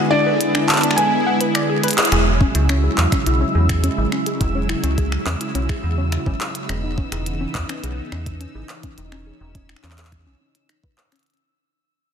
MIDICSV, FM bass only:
0, 0, Header, 1, 2, 480
1, 0, Start_track
1, 0, Key_signature, 4, "major"
1, 0, Tempo, 571429
1, 1782, Time_signature, 4, 2, 24, 8
1, 10192, End_track
2, 0, Start_track
2, 0, Title_t, "FM bass"
2, 0, Program_c, 0, 39
2, 1782, Note_on_c, 0, 28, 102
2, 2068, Note_off_c, 0, 28, 0
2, 2142, Note_on_c, 0, 37, 106
2, 2428, Note_off_c, 0, 37, 0
2, 2502, Note_on_c, 0, 40, 98
2, 2576, Note_off_c, 0, 40, 0
2, 2742, Note_on_c, 0, 35, 88
2, 2890, Note_off_c, 0, 35, 0
2, 2981, Note_on_c, 0, 40, 81
2, 3268, Note_off_c, 0, 40, 0
2, 3342, Note_on_c, 0, 32, 82
2, 3416, Note_off_c, 0, 32, 0
2, 3702, Note_on_c, 0, 28, 98
2, 3988, Note_off_c, 0, 28, 0
2, 4061, Note_on_c, 0, 37, 101
2, 4348, Note_off_c, 0, 37, 0
2, 4421, Note_on_c, 0, 40, 103
2, 4495, Note_off_c, 0, 40, 0
2, 4661, Note_on_c, 0, 35, 87
2, 4809, Note_off_c, 0, 35, 0
2, 4901, Note_on_c, 0, 40, 80
2, 5188, Note_off_c, 0, 40, 0
2, 5262, Note_on_c, 0, 32, 85
2, 5335, Note_off_c, 0, 32, 0
2, 5622, Note_on_c, 0, 28, 95
2, 5908, Note_off_c, 0, 28, 0
2, 5981, Note_on_c, 0, 28, 98
2, 6268, Note_off_c, 0, 28, 0
2, 6341, Note_on_c, 0, 40, 101
2, 6415, Note_off_c, 0, 40, 0
2, 6582, Note_on_c, 0, 35, 86
2, 6729, Note_off_c, 0, 35, 0
2, 6822, Note_on_c, 0, 40, 80
2, 7108, Note_off_c, 0, 40, 0
2, 7182, Note_on_c, 0, 32, 82
2, 7256, Note_off_c, 0, 32, 0
2, 7543, Note_on_c, 0, 28, 91
2, 7829, Note_off_c, 0, 28, 0
2, 7902, Note_on_c, 0, 28, 101
2, 8188, Note_off_c, 0, 28, 0
2, 8263, Note_on_c, 0, 40, 101
2, 8623, Note_on_c, 0, 35, 89
2, 8635, Note_off_c, 0, 40, 0
2, 8696, Note_off_c, 0, 35, 0
2, 10192, End_track
0, 0, End_of_file